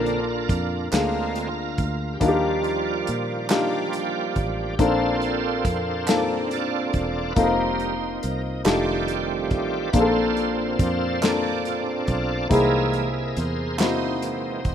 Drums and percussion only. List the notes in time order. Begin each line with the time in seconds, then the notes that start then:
0.06 closed hi-hat
0.49 kick, closed hi-hat
0.92 snare, clap, closed hi-hat
1.35 closed hi-hat
1.78 kick, closed hi-hat
2.21 kick, closed hi-hat
2.64 closed hi-hat
3.07 closed hi-hat
3.49 snare, clap, closed hi-hat
3.93 closed hi-hat
4.36 kick, closed hi-hat
4.79 kick, closed hi-hat
5.22 closed hi-hat
5.65 kick, closed hi-hat
6.07 snare, clap, closed hi-hat
6.51 closed hi-hat
6.93 kick, closed hi-hat
7.36 kick, closed hi-hat
7.79 closed hi-hat
8.23 closed hi-hat
8.65 snare, clap, closed hi-hat
9.08 closed hi-hat
9.51 kick, closed hi-hat
9.93 kick, closed hi-hat
10.37 closed hi-hat
10.79 kick, closed hi-hat
11.22 snare, clap, closed hi-hat
11.65 closed hi-hat
12.07 kick, closed hi-hat
12.51 kick, closed hi-hat
12.93 closed hi-hat
13.37 closed hi-hat
13.79 snare, clap, closed hi-hat
14.22 closed hi-hat
14.65 kick, closed hi-hat